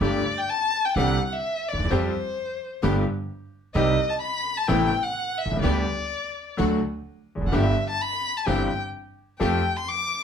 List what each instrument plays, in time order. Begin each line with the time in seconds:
0.01 upright bass G1, grand piano G1 G2 D3 G3 A3 G4, string section A3 D4 G4, violin D5
0.38 violin G5
0.50 violin A5
0.85 violin G5
0.96 upright bass C2, grand piano C2 C3 D3 G3 C4 G4, string section C4 D4 G4, violin F#5
1.26 violin F#5
1.33 violin E5
1.69 grand piano D2, violin D5
1.73 upright bass D2, grand piano D#2
1.79 upright bass D#2
1.84 grand piano E2, upright bass E2
1.90 grand piano F2 F3 G3 C4 G4, upright bass F2, string section C4 F4 G4, violin C5
2.82 grand piano G1 G2 D3 G3 B3 G4, upright bass G1, string section B3 D4 G4
3.75 upright bass C2, grand piano C2 C3 D#3 G3 C4 G4, string section C4 D#4 G4, violin D#5
4.10 violin A5
4.22 violin B5
4.57 violin A5
4.68 grand piano A1 A2 C3 A3 B3 E4, upright bass A1, string section B3 C4 A4, violin G5
5.03 violin F#5
5.38 violin E5
5.45 grand piano B1, upright bass B1
5.51 grand piano C2, upright bass C2
5.56 grand piano C#2, upright bass C#2
5.63 grand piano D2 D3 G3 B3 G4, upright bass D2, string section B3 D4 G4, violin D5
6.57 grand piano D2 D3 F#3 A3 F#4, upright bass D2, string section A3 D4 F#4
7.35 upright bass E1, grand piano E2
7.41 upright bass F1, grand piano F2
7.46 upright bass F#1, grand piano F#2, violin F#5
7.52 grand piano G1 G2 D3 G3 B3 G4, upright bass G1, string section B3 D4 G4, violin E5
7.90 violin A5
8.02 violin B5
8.37 violin A5
8.46 grand piano G1 G2 E3 G3 C4 G4, upright bass G1, string section C4 E4 G4, violin G5
9.40 grand piano F2 F3 A3 C4 G4, upright bass F2, string section A3 F4 G4, violin G5
9.77 violin C6
9.88 violin D6